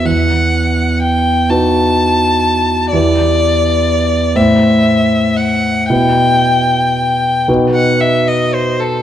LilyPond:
<<
  \new Staff \with { instrumentName = "Violin" } { \time 6/8 \key e \minor \tempo 4. = 40 fis''4 g''8 a''4. | d''4. e''4 fis''8 | g''4. r16 fis''16 e''16 dis''16 c''16 a'16 | }
  \new Staff \with { instrumentName = "Grand piano" } { \time 6/8 \key e \minor e,4. <dis' fis' b'>4. | <e, e' g' b'>4. <a, e' c''>4. | <b, e' b'>4. <b, dis' fis' b'>4. | }
>>